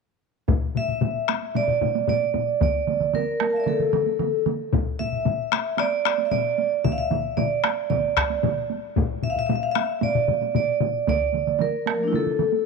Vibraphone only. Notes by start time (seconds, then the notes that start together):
0.77 E5
1.57 D5
2.09 D5
2.63 D5
3.15 A#4
3.50 F5 A5
3.56 D5 E5
3.64 A#4
3.68 A4
4.99 E5
5.79 D5
6.25 E5
6.31 D5
6.85 E5
6.92 F5
6.98 E5
7.37 D5
7.90 D5
9.24 E5
9.30 F5
9.39 E5
9.47 F5
9.56 E5
9.63 F5
9.71 E5
10.03 D5
10.56 D5
11.09 D5
11.62 A#4
11.93 F3 A3
12.01 A#3 D4
12.08 E4 F4
12.16 A4